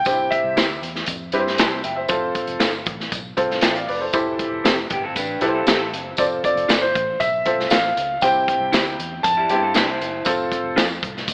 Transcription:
Already playing: grand piano G5
0.05 fingered electric bass C2, upright piano C3 C4 D4 G4 C5, kick, closed hi-hat, tambourine
0.12 upright piano E4
0.31 grand piano E5, kick, closed hi-hat
0.44 fingered electric bass C2
0.57 fingered electric bass D2, clean electric guitar E4 G4 C5 E5, snare, closed hi-hat, tambourine
0.82 fingered electric bass E2, closed hi-hat
0.96 snare
1.06 fingered electric bass F2, kick, closed hi-hat, tambourine
1.32 fingered electric bass G2, upright piano C4 E4 G4 B4, closed hi-hat
1.40 upright piano C5
1.47 snare
1.58 fingered electric bass C2, clean electric guitar E4 G4 C5 E5, upright piano A5 C6, snare, closed hi-hat, tambourine
1.84 fingered electric bass F#1, upright piano E5 G5, closed hi-hat
1.96 upright piano C5 E5
2.08 fingered electric bass F1, upright piano C4 F4 A4 C5, kick, closed hi-hat, tambourine
2.35 kick, closed hi-hat
2.47 fingered electric bass F1, closed hi-hat
2.60 fingered electric bass G1, clean electric guitar F4 A4 C5 F5, snare, closed hi-hat, tambourine
2.86 fingered electric bass A1, kick, closed hi-hat
3.00 snare
3.12 fingered electric bass B1, kick, closed hi-hat, tambourine
3.37 fingered electric bass C2, upright piano C4 F4 A4 C5, kick, closed hi-hat
3.51 snare
3.61 fingered electric bass A1, clean electric guitar F4 A4 C5 F5, upright piano E5 G5, snare, closed hi-hat, tambourine
3.76 upright piano D5 F5, closed hi-hat
3.88 fingered electric bass F1, upright piano B4 D5, open hi-hat
4.01 upright piano A4 C5
4.13 fingered electric bass E1, upright piano E3 E4 G4 A4 C5, kick, closed hi-hat, tambourine
4.39 kick, closed hi-hat
4.51 fingered electric bass E1
4.64 fingered electric bass F1, clean electric guitar C4 G4 A4 E5, snare, closed hi-hat, tambourine
4.90 fingered electric bass G1, clean electric guitar B3 G4, kick, closed hi-hat
5.04 clean electric guitar C4 A4
5.16 fingered electric bass A1, clean electric guitar D4 B4, kick, closed hi-hat, tambourine
5.41 fingered electric bass B1, upright piano E4 G4 A4 B4, clean electric guitar E4 C5, closed hi-hat
5.48 upright piano C5
5.55 clean electric guitar C4 A4
5.67 fingered electric bass A1, clean electric guitar C4 G4 A4 E5, snare, closed hi-hat, tambourine
5.92 fingered electric bass F#1, closed hi-hat
6.17 fingered electric bass F1, upright piano C4 F4 A4 C5, grand piano D5, kick, closed hi-hat, tambourine
6.44 grand piano D5, kick, closed hi-hat
6.55 fingered electric bass F1, closed hi-hat
6.69 fingered electric bass G1, clean electric guitar F4 A4 C5 F5, snare, closed hi-hat, tambourine
6.82 grand piano C5
6.95 fingered electric bass A1, kick, closed hi-hat
7.20 fingered electric bass B1, grand piano E5, kick, closed hi-hat, tambourine
7.45 upright piano C4 F4 A4 C5, kick, closed hi-hat
7.58 fingered electric bass C2, snare
7.70 fingered electric bass A1, clean electric guitar F4 A4 C5 F5, grand piano F5, snare, closed hi-hat, tambourine
7.97 fingered electric bass C#2, closed hi-hat
8.21 fingered electric bass C2, upright piano C3 C4 E4 G4 C5, grand piano G5, kick, closed hi-hat, tambourine
8.48 kick, closed hi-hat
8.60 fingered electric bass C2
8.72 fingered electric bass D2, clean electric guitar E4 G4 C5 E5, snare, closed hi-hat, tambourine
8.99 fingered electric bass E2, closed hi-hat
9.23 fingered electric bass F2, grand piano A5, kick, closed hi-hat, tambourine
9.37 clean electric guitar G3 E4
9.49 fingered electric bass G2, clean electric guitar B3 G4, upright piano C4 E4 G4 C5, closed hi-hat
9.62 clean electric guitar C4 A4
9.74 fingered electric bass C2, clean electric guitar D4 E4 G4 B4 C5 E5, snare, closed hi-hat, tambourine
9.88 clean electric guitar E4 C5
10.00 fingered electric bass F#1, closed hi-hat
10.25 fingered electric bass F1, upright piano C4 F4 A4 C5, kick, closed hi-hat, tambourine
10.52 kick, closed hi-hat
10.64 fingered electric bass F1
10.76 fingered electric bass F2, clean electric guitar F4 A4 C5 F5, snare, closed hi-hat, tambourine
11.02 fingered electric bass C2, kick, closed hi-hat
11.17 snare
11.28 fingered electric bass D2, kick, closed hi-hat, tambourine

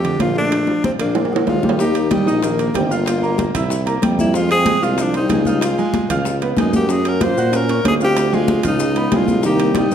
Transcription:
Already playing: tuba F2, tenor saxophone G4
0.04 grand piano D3 D4, high bongo, high conga, high timbale
0.19 tuba A#1, tenor saxophone F4, high bongo, low bongo, high conga, high timbale, low timbale
0.36 grand piano A3 A4, tenor saxophone D4, high bongo
0.52 high bongo, high conga, high timbale
0.67 grand piano F3 F4, high bongo, high conga
0.84 tenor saxophone C4, high bongo, high conga, high timbale
0.99 tuba A#1, tenor saxophone A#3, grand piano D4 D5, high conga, high timbale
1.15 low bongo, high conga, high timbale
1.25 high timbale
1.32 grand piano G#3 G#4, high conga
1.36 high timbale
1.46 tuba D#2, trombone G#3, tenor saxophone F4, low bongo, high conga, low timbale
1.63 grand piano G3 G4, low bongo, high conga
1.69 low timbale
1.79 grand piano D#3 D#4 D#5, trombone A#3, tenor saxophone G4, high bongo, high conga, maracas
1.95 high conga, high timbale, maracas
2.11 grand piano G3 G4 G5, trombone G3, tenor saxophone D#4, high bongo, high conga, high timbale, maracas
2.26 tuba A#1, grand piano D#4 D#5 D#6, high bongo, maracas
2.42 trombone D#3, tenor saxophone A#3, high bongo, high conga, high timbale, maracas
2.59 grand piano A#3 A#4 A#5, high bongo, high conga, high timbale, maracas
2.74 tuba G1, trombone D#3, grand piano G3 G4 G5, tenor saxophone C4, high bongo, low bongo, high conga, high timbale, low timbale, maracas
2.90 trombone A#3, grand piano F4 F5 F6, tenor saxophone F4, high bongo, maracas
3.06 high bongo, high conga, high timbale, maracas
3.23 grand piano A#3 A#4 A#5, high conga, maracas
3.38 high bongo, high conga, high timbale, maracas
3.54 tuba C2, grand piano E4 E5 E6, high bongo, high conga, low conga, high timbale, maracas
3.70 high bongo, high conga, maracas
3.86 grand piano A#3 A#4 A#5, high bongo, high conga, high timbale, maracas
4.02 tuba F2, grand piano G3 G4 G5, high bongo, low bongo, high conga, high timbale, maracas
4.19 trombone G3, tenor saxophone E4, high bongo, high conga, maracas
4.33 grand piano F3 F4 F5, trombone G#3, tenor saxophone F4, high bongo, high conga, maracas
4.50 trombone C4, tenor saxophone G#4, high conga, high timbale, maracas
4.66 grand piano G#3 G#4 G#5, high bongo, high conga, high timbale, maracas
4.81 tuba C2, trombone G#3, grand piano F4 F5 F6, tenor saxophone F4, high bongo, maracas
4.98 trombone F3, tenor saxophone D4, high bongo, high conga, high timbale, maracas
5.14 grand piano C4 C5 C6, tenor saxophone D#4, high bongo, high conga, high timbale, maracas
5.18 trombone G3
5.29 tuba C#2, grand piano G#3 G#4 G#5, high bongo, low bongo, high conga, high timbale, maracas
5.45 trombone G3, tenor saxophone D#4, grand piano F4 F5 F6, high bongo, high conga, maracas
5.61 trombone G#3, tenor saxophone F4, high bongo, high conga, high timbale, maracas
5.78 grand piano G#3 G#4 G#5, high conga, maracas
5.94 high bongo, high conga, high timbale, maracas
6.09 tuba C#2, grand piano F4 F5 F6, high bongo, high conga, low conga, high timbale, maracas
6.25 high bongo, high conga, maracas
6.41 grand piano B3 B4 B5, high bongo, high conga, high timbale, maracas
6.57 tuba F#2, trombone G#3, grand piano G#3 G#4 G#5, tenor saxophone D#4, high bongo, low bongo, high conga, high timbale, maracas
6.73 trombone A#3, tenor saxophone G4, high bongo, high conga, maracas
6.89 grand piano F#3 F#4 F#5, trombone C#4, tenor saxophone G#4, high bongo, high conga, maracas
7.04 trombone C#4, tenor saxophone A#4, high conga, high timbale, maracas
7.21 grand piano A#3 A#4 A#5, trombone F4, tenor saxophone C5, high bongo, high conga, high timbale, maracas
7.36 tuba A#2, grand piano F#4 F#5 F#6, high bongo, maracas
7.52 trombone C#4, tenor saxophone A#4, high bongo, high conga, high timbale, maracas
7.69 grand piano C#4 C#5 C#6, high bongo, high conga, high timbale, maracas
7.84 tuba D2, grand piano A#3 A#4 A#5, trombone C#4, high bongo, low bongo, high conga, high timbale, low timbale, maracas
7.88 tenor saxophone G#4
8.01 trombone C4, grand piano F4 F5 F6, tenor saxophone G4, high bongo, maracas
8.17 high bongo, high conga, high timbale, maracas
8.33 grand piano G#3 G#4 G#5, trombone G#3, tenor saxophone F4, high conga, maracas
8.48 high bongo, high conga, high timbale, maracas
8.63 tuba C#2, trombone G#3, tenor saxophone D#4, grand piano F4 F5 F6, high bongo, high conga, low conga, high timbale, maracas
8.80 high bongo, high conga, maracas
8.96 grand piano B3 B4 B5, high bongo, high conga, high timbale, maracas
9.11 tuba C2, trombone G#3, grand piano G#3 G#4 G#5, high bongo, low bongo, high conga, high timbale, low timbale, maracas
9.15 tenor saxophone F4
9.27 high bongo, high conga, maracas
9.43 grand piano D#3 D#4 D#5, trombone A#3, tenor saxophone G4, high bongo, high conga, maracas
9.60 high conga, high timbale, maracas
9.75 grand piano G3 G4 G5, trombone G3, tenor saxophone D#4, high bongo, high conga, high timbale, maracas
9.90 tuba G2, grand piano D#3, high bongo, maracas

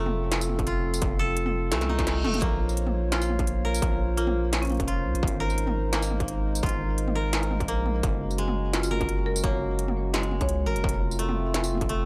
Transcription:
Already playing: sub bass F1, koto A3 F4, analog synth pad C4 F4 A4
0.06 mid tom
0.32 snare, closed hi-hat
0.41 closed hi-hat, tambourine
0.49 mid tom
0.59 kick, closed hi-hat
0.67 koto F4, closed hi-hat
0.94 closed hi-hat, tambourine
1.02 sub bass F1, kick, closed hi-hat
1.19 koto A4
1.37 closed hi-hat
1.46 mid tom
1.72 sub bass C2, koto A3, snare, closed hi-hat, high tom, reverse cymbal
1.81 snare, closed hi-hat, mid tom
1.89 koto D#4, mid tom
1.99 kick, snare, closed hi-hat
2.07 snare, closed hi-hat
2.24 sub bass F1, koto A3, mid tom
2.34 closed hi-hat, mid tom
2.42 sub bass A#1, koto A#3, analog synth pad A#3 F4 C5 C#5, kick, closed hi-hat
2.69 tambourine
2.77 closed hi-hat
2.87 mid tom
3.12 koto F4, marimba F4, snare, closed hi-hat
3.22 marimba F4, closed hi-hat, tambourine
3.30 mid tom
3.39 kick, closed hi-hat
3.47 closed hi-hat
3.65 koto A#4
3.75 closed hi-hat, tambourine
3.82 sub bass A#1, kick, closed hi-hat
4.17 koto A#3, marimba F4, closed hi-hat
4.27 mid tom
4.53 snare, closed hi-hat
4.62 marimba C#4, closed hi-hat
4.65 closed hi-hat
4.67 closed hi-hat
4.69 closed hi-hat, mid tom
4.72 closed hi-hat
4.74 closed hi-hat
4.77 sub bass F1, kick, closed hi-hat
4.80 closed hi-hat
4.87 koto F4, closed hi-hat
5.05 sub bass C2
5.15 sub bass A#1, closed hi-hat
5.22 sub bass G#1, analog synth pad G#3 D#4 A#4, kick
5.28 closed hi-hat
5.40 koto A#4
5.50 tambourine
5.58 closed hi-hat
5.67 mid tom
5.93 koto A#3, snare, closed hi-hat
6.02 closed hi-hat, tambourine
6.10 mid tom
6.20 kick, closed hi-hat
6.28 closed hi-hat
6.55 closed hi-hat, tambourine
6.63 sub bass G#1, koto F4, kick, closed hi-hat
6.66 closed hi-hat
6.69 closed hi-hat
6.98 closed hi-hat
7.08 mid tom
7.15 koto A#4
7.33 snare, closed hi-hat
7.43 closed hi-hat
7.51 mid tom
7.60 kick, closed hi-hat
7.68 sub bass A#1, koto A#3, closed hi-hat
7.86 mid tom
8.03 sub bass F#1, analog synth pad C#4 F#4, kick, closed hi-hat
8.31 tambourine
8.38 koto G#3, closed hi-hat
8.48 mid tom
8.73 marimba F4, snare, closed hi-hat
8.83 marimba F4, closed hi-hat, tambourine
8.91 koto A#4, mid tom
9.01 kick, closed hi-hat
9.09 closed hi-hat
9.26 marimba A#4
9.36 closed hi-hat, tambourine
9.44 sub bass F#1, koto A#3, marimba C#5, kick, closed hi-hat
9.79 closed hi-hat
9.88 mid tom
10.14 koto G#3, snare, closed hi-hat
10.23 closed hi-hat
10.31 mid tom
10.41 sub bass C#2, marimba C#5, kick, closed hi-hat
10.49 closed hi-hat
10.66 sub bass G#1, koto A#4
10.76 sub bass F#1, closed hi-hat
10.84 sub bass F1, analog synth pad A3 C4 F4, kick
10.89 closed hi-hat
11.11 tambourine
11.19 koto A3, closed hi-hat
11.29 mid tom
11.54 snare, closed hi-hat
11.64 closed hi-hat, tambourine
11.72 mid tom
11.75 mid tom
11.78 kick, closed hi-hat, mid tom
11.89 koto A3, closed hi-hat

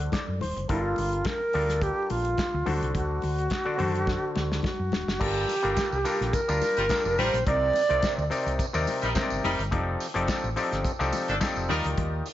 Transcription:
Already playing: clav D3 D4 F#4 A4 C5 F#5, alto flute A4
0.00 closed hi-hat
0.12 clav D5, kick, snare, clap, closed hi-hat, high conga
0.28 fingered electric bass F#2
0.41 fingered electric bass D#1, clav C5, open hi-hat, high conga
0.56 fingered electric bass F#1, closed hi-hat
0.69 fingered electric bass G1, clav G3 D4 F4 A4 A#4, alto flute F4, kick, closed hi-hat, muted conga
0.96 fingered electric bass G1, open hi-hat, muted conga
1.13 closed hi-hat
1.25 alto flute A#4, kick, snare, clap, closed hi-hat, high conga
1.53 fingered electric bass D2, clav G3 D4 F4 A4 A#4, open hi-hat
1.69 snare, closed hi-hat
1.82 alto flute G4, kick, closed hi-hat
2.10 fingered electric bass A#1, alto flute F4, open hi-hat, muted conga
2.25 closed hi-hat
2.37 kick, snare, clap, closed hi-hat, high conga
2.54 fingered electric bass D2
2.66 fingered electric bass D2, clav D3 D4 F#4 A4 C5, alto flute F#4, open hi-hat, high conga
2.82 fingered electric bass C2, closed hi-hat
2.95 fingered electric bass D2, alto flute F#4, kick, closed hi-hat, muted conga
3.22 fingered electric bass D2, open hi-hat, muted conga
3.39 closed hi-hat
3.50 kick, snare, clap, closed hi-hat, high conga
3.65 clav D3 D4 F#4 A4 D5
3.77 fingered electric bass F#2, clav D3 D4 F#4 A4 C5, open hi-hat, low conga
3.95 closed hi-hat
4.07 kick, snare
4.36 fingered electric bass D2, snare, muted conga
4.52 snare
4.63 alto flute F#4, kick, snare, high conga
4.79 fingered electric bass F#2
4.92 fingered electric bass D#1, snare, high conga
5.07 fingered electric bass F#1, snare
5.19 fingered electric bass G1, clav G3 D4 F4 A4 A#4, alto flute G4, kick, crash, muted conga
5.48 open hi-hat, tambourine, muted conga
5.63 fingered electric bass G1, clav G3 D4 F4 A4 A#4, closed hi-hat
5.76 kick, snare, clap, closed hi-hat, tambourine, high conga
5.92 fingered electric bass C2, tambourine
6.04 clav G3 D4 F4 A4 A#4, open hi-hat, tambourine
6.21 fingered electric bass A#1, snare, closed hi-hat
6.33 alto flute A#4, kick, closed hi-hat, tambourine
6.48 fingered electric bass D2, clav G3 D4 F4 G4 A#4, tambourine
6.61 open hi-hat, tambourine, muted conga
6.77 fingered electric bass G1, horn section G3 F4 A#4, closed hi-hat, tambourine
6.89 clav G3 D4 F4 A4 A#4, kick, snare, clap, closed hi-hat, tambourine, high conga
7.05 fingered electric bass F1, tambourine
7.18 fingered electric bass A1, horn section G3 F4 A#4, alto flute C5, open hi-hat, high conga
7.34 fingered electric bass A#1, closed hi-hat, tambourine
7.46 fingered electric bass C2, clav C3 C4 D#4 A#4 D5, alto flute D5, kick, closed hi-hat, muted conga
7.73 open hi-hat, tambourine, muted conga
7.89 fingered electric bass C2, clav C3 C4 D#4 A#4 D5, closed hi-hat
8.02 kick, snare, clap, closed hi-hat, tambourine, high conga
8.18 fingered electric bass D2, tambourine
8.30 clav C3 C4 D#4 A#4 D5, open hi-hat, tambourine
8.46 fingered electric bass C2, closed hi-hat, tambourine
8.59 kick, closed hi-hat, tambourine
8.73 fingered electric bass D#2, clav C3 C4 D#4 A#4 D5, tambourine
8.87 open hi-hat, tambourine, muted conga
9.01 fingered electric bass A#1, horn section G3 D#4 A#4, closed hi-hat, tambourine
9.15 clav C3 C4 D#4 A#4 C5, kick, snare, clap, closed hi-hat, tambourine, high conga
9.23 clav D5
9.30 fingered electric bass G1, tambourine
9.44 fingered electric bass F1, horn section G3 D#4 A#4, open hi-hat, high conga
9.59 fingered electric bass G1, closed hi-hat, tambourine
9.71 fingered electric bass F1, clav F3 C4 D#4 G4 A4 D5, kick, closed hi-hat, muted conga
10.00 open hi-hat, tambourine
10.14 fingered electric bass F1, clav F3 C4 D#4 G4 A4 D5, closed hi-hat
10.28 kick, snare, clap, closed hi-hat, tambourine, high conga
10.44 fingered electric bass A1, tambourine
10.56 clav F3 C4 D#4 G4 A4 D5, open hi-hat, tambourine
10.72 fingered electric bass G1, snare, closed hi-hat, tambourine
10.85 kick, closed hi-hat, tambourine
10.99 fingered electric bass C2, clav F3 C4 D#4 G4 A4 D5, tambourine
11.13 open hi-hat, tambourine, muted conga
11.28 fingered electric bass G1, horn section D#3 D4 A4, closed hi-hat
11.40 clav F3 C4 D#4 G4 A4 D5, kick, snare, clap, closed hi-hat, tambourine, high conga
11.56 fingered electric bass F1, tambourine
11.69 fingered electric bass D#2, clav D#3 D#4 F4 G4 D5, horn section G3 D#4 A#4, open hi-hat, high conga
11.84 fingered electric bass D2, closed hi-hat, tambourine
11.97 fingered electric bass D#2, kick, closed hi-hat, muted conga
12.26 open hi-hat, tambourine

